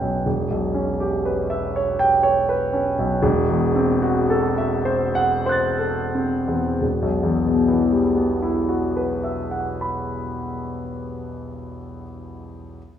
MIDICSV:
0, 0, Header, 1, 2, 480
1, 0, Start_track
1, 0, Key_signature, 1, "minor"
1, 0, Tempo, 993377
1, 118, Time_signature, 3, 2, 24, 8
1, 1557, Tempo, 1063830
1, 2037, Tempo, 1171875
1, 2517, Tempo, 1348315
1, 2997, Tempo, 1257862
1, 5356, End_track
2, 0, Start_track
2, 0, Title_t, "Grand piano"
2, 0, Program_c, 0, 0
2, 0, Control_c, 0, 64, 127
2, 0, Note_on_c, 0, 28, 61
2, 0, Note_on_c, 0, 61, 46
2, 0, Note_on_c, 0, 71, 46
2, 0, Note_on_c, 0, 73, 53
2, 0, Note_on_c, 0, 76, 52
2, 0, Note_on_c, 0, 79, 61
2, 7, Note_on_c, 0, 35, 45
2, 73, Note_off_c, 0, 61, 0
2, 99, Note_off_c, 0, 28, 0
2, 123, Note_off_c, 0, 35, 0
2, 126, Note_on_c, 0, 28, 63
2, 129, Note_off_c, 0, 71, 0
2, 129, Control_c, 0, 64, 0
2, 131, Note_off_c, 0, 73, 0
2, 132, Note_off_c, 0, 76, 0
2, 133, Note_off_c, 0, 79, 0
2, 221, Control_c, 0, 64, 127
2, 243, Note_on_c, 0, 35, 51
2, 360, Note_on_c, 0, 61, 52
2, 433, Note_off_c, 0, 35, 0
2, 484, Note_on_c, 0, 67, 56
2, 552, Note_off_c, 0, 61, 0
2, 606, Note_on_c, 0, 71, 57
2, 675, Note_off_c, 0, 67, 0
2, 725, Note_on_c, 0, 76, 65
2, 796, Note_off_c, 0, 71, 0
2, 850, Note_on_c, 0, 73, 60
2, 915, Note_off_c, 0, 76, 0
2, 963, Note_on_c, 0, 79, 74
2, 1037, Note_off_c, 0, 73, 0
2, 1078, Note_on_c, 0, 73, 63
2, 1152, Note_off_c, 0, 79, 0
2, 1203, Note_on_c, 0, 71, 60
2, 1269, Note_off_c, 0, 73, 0
2, 1321, Note_on_c, 0, 61, 56
2, 1390, Note_off_c, 0, 71, 0
2, 1443, Note_on_c, 0, 35, 60
2, 1510, Note_off_c, 0, 61, 0
2, 1542, Note_off_c, 0, 28, 0
2, 1558, Note_on_c, 0, 28, 83
2, 1561, Note_off_c, 0, 35, 0
2, 1565, Control_c, 0, 64, 0
2, 1643, Control_c, 0, 64, 127
2, 1680, Note_on_c, 0, 40, 58
2, 1796, Note_on_c, 0, 60, 69
2, 1868, Note_off_c, 0, 40, 0
2, 1917, Note_on_c, 0, 66, 69
2, 1990, Note_off_c, 0, 60, 0
2, 2042, Note_on_c, 0, 69, 71
2, 2107, Note_off_c, 0, 66, 0
2, 2157, Note_on_c, 0, 76, 69
2, 2225, Note_off_c, 0, 69, 0
2, 2269, Note_on_c, 0, 72, 65
2, 2344, Note_off_c, 0, 76, 0
2, 2391, Note_on_c, 0, 78, 87
2, 2466, Note_off_c, 0, 72, 0
2, 2518, Note_on_c, 0, 84, 53
2, 2519, Note_on_c, 0, 72, 68
2, 2529, Note_on_c, 0, 90, 51
2, 2539, Note_on_c, 0, 93, 54
2, 2586, Note_off_c, 0, 78, 0
2, 2634, Note_on_c, 0, 69, 59
2, 2707, Note_off_c, 0, 72, 0
2, 2762, Note_on_c, 0, 60, 56
2, 2833, Note_off_c, 0, 69, 0
2, 2881, Note_on_c, 0, 40, 52
2, 2954, Note_off_c, 0, 60, 0
2, 2983, Note_off_c, 0, 84, 0
2, 2984, Note_off_c, 0, 28, 0
2, 2989, Note_off_c, 0, 90, 0
2, 2994, Note_off_c, 0, 93, 0
2, 2997, Note_off_c, 0, 40, 0
2, 2999, Note_on_c, 0, 28, 58
2, 3008, Control_c, 0, 64, 0
2, 3079, Note_on_c, 0, 35, 60
2, 3091, Control_c, 0, 64, 127
2, 3158, Note_on_c, 0, 40, 58
2, 3247, Note_on_c, 0, 47, 58
2, 3332, Note_on_c, 0, 52, 59
2, 3423, Note_on_c, 0, 55, 55
2, 3515, Note_on_c, 0, 59, 51
2, 3614, Note_on_c, 0, 64, 54
2, 3715, Note_on_c, 0, 66, 55
2, 3821, Note_on_c, 0, 71, 51
2, 3924, Note_on_c, 0, 76, 46
2, 4030, Note_on_c, 0, 78, 48
2, 4144, Note_on_c, 0, 83, 44
2, 4370, Note_off_c, 0, 28, 0
2, 4450, Note_off_c, 0, 35, 0
2, 4530, Note_off_c, 0, 40, 0
2, 4618, Note_off_c, 0, 47, 0
2, 4703, Note_off_c, 0, 52, 0
2, 4795, Note_off_c, 0, 55, 0
2, 4887, Note_off_c, 0, 59, 0
2, 4986, Note_off_c, 0, 64, 0
2, 4987, Note_off_c, 0, 78, 0
2, 4987, Note_off_c, 0, 83, 0
2, 4988, Note_off_c, 0, 66, 0
2, 4988, Note_off_c, 0, 76, 0
2, 4990, Note_off_c, 0, 71, 0
2, 5278, Control_c, 0, 64, 0
2, 5356, End_track
0, 0, End_of_file